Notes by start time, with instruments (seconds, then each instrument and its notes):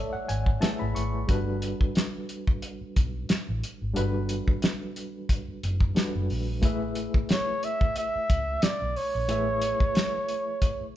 Already playing: reed electric piano A3 E4 A4 B4 C#5 D5 E5, flugelhorn A4
0.13 reed electric piano F#5, muted fingered electric bass stroke
0.29 fingered electric bass G#1, reed electric piano G#5, closed hi-hat
0.46 kick
0.60 reed electric piano A3 E4 G#4 B4 E5 A5, snare, closed hi-hat
0.79 fingered electric bass G#1, reed electric piano B5
0.95 fingered electric bass G#1, reed electric piano C#6, closed hi-hat
1.27 fingered electric bass G1, reed electric piano G3 D4 F#4 A4 B4, kick, closed hi-hat
1.62 closed hi-hat
1.81 muted fingered electric bass stroke, kick
1.95 snare, closed hi-hat
2.29 closed hi-hat
2.47 kick
2.62 closed hi-hat
2.81 muted fingered electric bass stroke
2.96 fingered electric bass B1, kick, closed hi-hat
3.29 muted fingered electric bass stroke, snare, closed hi-hat
3.49 fingered electric bass A1
3.64 closed hi-hat
3.82 fingered electric bass G#1
3.94 fingered electric bass G1, reed electric piano G3 D4 F#4 A4 B4, closed hi-hat
4.29 closed hi-hat
4.48 muted fingered electric bass stroke, kick
4.62 snare, closed hi-hat
4.96 closed hi-hat
5.29 kick, closed hi-hat
5.48 muted fingered electric bass stroke
5.63 fingered electric bass F#1, closed hi-hat
5.80 kick
5.95 reed electric piano G3 D4 F#4 A4 B4, snare, closed hi-hat
6.15 fingered electric bass F#1
6.30 fingered electric bass A#1, open hi-hat
6.62 fingered electric bass A1, reed electric piano A3 E4 G#4 B4 E5, kick, closed hi-hat
6.95 closed hi-hat
7.14 muted fingered electric bass stroke, kick
7.29 flugelhorn C#5, snare, closed hi-hat
7.63 flugelhorn E5, closed hi-hat
7.81 kick
7.96 flugelhorn E5, closed hi-hat
8.15 muted fingered electric bass stroke
8.30 fingered electric bass C#2, kick, closed hi-hat
8.62 flugelhorn D5, snare, closed hi-hat
8.82 fingered electric bass B1
8.96 flugelhorn C#5, open hi-hat
9.15 fingered electric bass A#1
9.28 fingered electric bass A1, reed electric piano A3 E4 G#4 B4 E5, closed hi-hat
9.62 closed hi-hat
9.80 kick
9.95 snare, closed hi-hat
10.29 closed hi-hat
10.62 kick, closed hi-hat
10.81 muted fingered electric bass stroke